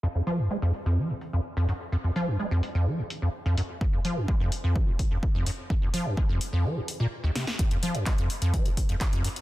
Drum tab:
HH |--o---o---o---o-|--o---o---o---o-|--o---o---o---o-|--o---o---o---o-|
CP |----------------|----------------|----------------|----------------|
SD |----------------|----------------|----------------|--------------oo|
BD |----------------|----------------|o---o---o-o-o---|o---o-----------|

HH |xxoxxxoxxxoxxxox|
CP |----x-------x---|
SD |----------------|
BD |o---o---o-o-o---|